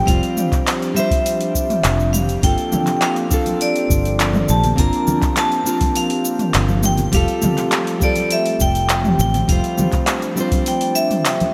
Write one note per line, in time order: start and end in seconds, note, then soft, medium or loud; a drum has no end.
0.00 7.10 F3 medium
0.00 11.54 C4 medium
0.00 7.10 G4 medium
0.06 0.19 F1 medium
0.06 0.91 G3 medium
0.06 0.92 C4 medium
0.06 2.41 D4 medium
0.06 0.93 F4 medium
0.06 0.62 F5 medium
0.06 kick loud
0.06 open hi-hat medium
0.06 cabasa soft
0.10 0.94 C5 loud
0.23 open hi-hat soft
0.23 cabasa soft
0.37 mid tom medium
0.37 cabasa medium
0.52 kick loud
0.52 clap soft
0.52 open hi-hat soft
0.52 cabasa soft
0.67 clap loud
0.67 open hi-hat medium
0.67 cabasa soft
0.82 open hi-hat soft
0.82 cabasa soft
0.95 2.39 G3 medium
0.95 2.39 C4 medium
0.95 2.41 F4 medium
0.95 2.10 E5 medium
0.95 cabasa medium
0.99 2.41 C5 loud
1.11 kick loud
1.11 open hi-hat soft
1.11 cabasa soft
1.26 open hi-hat medium
1.26 cabasa soft
1.41 open hi-hat soft
1.41 cabasa soft
1.55 kick medium
1.55 cabasa medium
1.70 mid tom medium
1.70 open hi-hat soft
1.70 cabasa soft
1.84 2.38 F1 medium
1.84 clap loud
1.84 open hi-hat medium
1.84 cabasa soft
2.00 cabasa soft
2.13 2.26 F5 medium
2.13 mid tom medium
2.13 cabasa medium
2.29 open hi-hat soft
2.29 cabasa soft
2.42 2.55 G1 medium
2.42 3.27 A#3 medium
2.42 7.10 A#3 medium
2.42 3.28 C4 medium
2.42 3.28 D4 medium
2.42 3.29 F4 medium
2.42 2.95 G5 medium
2.42 kick loud
2.42 open hi-hat medium
2.42 cabasa soft
2.46 3.29 A4 loud
2.58 open hi-hat soft
2.58 cabasa soft
2.72 mid tom medium
2.72 high conga loud
2.72 low conga medium
2.72 cabasa medium
2.87 clap soft
2.87 open hi-hat soft
2.87 cabasa soft
2.97 3.03 G5 medium
3.02 3.63 F5 medium
3.02 clap loud
3.02 open hi-hat medium
3.02 cabasa soft
3.16 open hi-hat soft
3.16 cabasa soft
3.29 4.74 A#3 medium
3.29 4.74 C4 medium
3.29 4.75 D4 medium
3.29 4.76 F4 medium
3.29 kick loud
3.29 cabasa medium
3.34 4.76 A4 loud
3.46 open hi-hat soft
3.46 high conga medium
3.46 cabasa soft
3.61 4.52 D5 loud
3.61 open hi-hat medium
3.61 cabasa soft
3.76 open hi-hat soft
3.76 cabasa soft
3.90 4.43 G1 medium
3.90 kick loud
3.90 cabasa medium
4.05 open hi-hat soft
4.05 cabasa soft
4.20 clap loud
4.20 open hi-hat medium
4.20 cabasa soft
4.33 mid tom medium
4.33 high conga medium
4.33 cabasa soft
4.49 4.72 A#1 medium
4.49 4.63 A5 loud
4.49 cabasa medium
4.64 open hi-hat soft
4.64 low conga medium
4.64 cabasa soft
4.76 4.90 G1 medium
4.76 5.62 A#3 medium
4.76 5.63 C4 medium
4.76 5.63 D4 medium
4.76 5.64 F4 medium
4.76 5.34 A#5 loud
4.76 kick loud
4.76 open hi-hat medium
4.76 cabasa soft
4.80 5.64 A#4 loud
4.93 open hi-hat soft
4.93 cabasa soft
5.07 high conga medium
5.07 low conga medium
5.07 cabasa medium
5.22 kick loud
5.22 clap soft
5.22 open hi-hat soft
5.22 cabasa soft
5.37 5.98 A5 loud
5.37 clap loud
5.37 open hi-hat medium
5.37 cabasa soft
5.52 open hi-hat soft
5.52 cabasa soft
5.64 7.09 A#3 medium
5.64 7.09 C4 medium
5.64 7.10 D4 medium
5.64 7.10 F4 medium
5.64 cabasa medium
5.69 7.11 A#4 loud
5.81 kick loud
5.81 open hi-hat soft
5.81 high conga medium
5.81 cabasa soft
5.96 6.81 F5 loud
5.96 open hi-hat medium
5.96 cabasa soft
6.10 open hi-hat soft
6.10 cabasa soft
6.25 cabasa medium
6.39 mid tom medium
6.39 open hi-hat soft
6.39 cabasa soft
6.54 7.08 G1 medium
6.54 clap loud
6.54 open hi-hat medium
6.54 cabasa soft
6.69 high conga medium
6.69 cabasa soft
6.83 6.99 G5 loud
6.83 mid tom medium
6.83 cabasa medium
6.98 open hi-hat soft
6.98 low conga medium
6.98 cabasa soft
7.12 7.25 F1 medium
7.12 11.54 F3 medium
7.12 7.97 G3 medium
7.12 11.54 A3 medium
7.12 7.98 C4 medium
7.12 7.99 F4 medium
7.12 11.54 G4 medium
7.12 7.99 G4 medium
7.12 8.05 F5 loud
7.12 9.47 G5 medium
7.12 kick loud
7.12 open hi-hat medium
7.12 cabasa soft
7.17 8.00 A4 loud
7.28 open hi-hat soft
7.28 cabasa soft
7.42 mid tom medium
7.42 high conga loud
7.42 low conga medium
7.42 cabasa medium
7.58 clap soft
7.58 open hi-hat soft
7.58 cabasa soft
7.72 clap loud
7.72 open hi-hat medium
7.72 cabasa soft
7.87 open hi-hat soft
7.87 cabasa soft
8.00 9.45 G3 loud
8.00 9.45 C4 medium
8.00 9.46 F4 medium
8.00 8.33 D5 medium
8.00 kick loud
8.00 cabasa medium
8.05 9.47 A4 loud
8.16 open hi-hat soft
8.16 high conga medium
8.16 cabasa soft
8.31 8.62 E5 loud
8.31 open hi-hat medium
8.31 cabasa soft
8.46 open hi-hat soft
8.46 cabasa soft
8.60 9.14 F1 medium
8.60 9.20 G5 loud
8.60 kick loud
8.60 cabasa medium
8.75 open hi-hat soft
8.75 cabasa soft
8.89 clap loud
8.89 open hi-hat medium
8.89 cabasa soft
9.05 mid tom medium
9.05 high conga medium
9.05 cabasa soft
9.19 9.42 A1 loud
9.19 9.48 G5 medium
9.19 cabasa medium
9.34 open hi-hat soft
9.34 low conga medium
9.34 cabasa soft
9.48 9.60 F1 medium
9.48 10.33 G3 medium
9.48 10.34 C4 medium
9.48 11.54 D4 medium
9.48 10.35 F4 medium
9.48 10.70 F5 medium
9.48 kick loud
9.48 open hi-hat medium
9.48 cabasa soft
9.52 10.35 C5 loud
9.64 open hi-hat soft
9.64 cabasa soft
9.78 mid tom medium
9.78 high conga medium
9.78 low conga medium
9.78 cabasa medium
9.92 kick loud
9.92 clap soft
9.92 open hi-hat soft
9.92 cabasa soft
10.07 clap loud
10.07 open hi-hat medium
10.07 cabasa soft
10.22 open hi-hat soft
10.22 cabasa soft
10.36 11.54 G3 loud
10.36 11.54 C4 medium
10.36 11.54 F4 medium
10.36 cabasa medium
10.41 11.54 C5 loud
10.52 kick loud
10.52 open hi-hat soft
10.52 high conga medium
10.52 cabasa soft
10.66 11.51 G5 medium
10.66 open hi-hat medium
10.66 cabasa soft
10.81 open hi-hat soft
10.81 cabasa soft
10.95 11.51 E5 loud
10.95 cabasa medium
11.11 mid tom medium
11.11 open hi-hat soft
11.11 cabasa soft
11.25 clap loud
11.25 open hi-hat medium
11.25 cabasa soft
11.40 open hi-hat soft
11.40 high conga medium
11.40 cabasa soft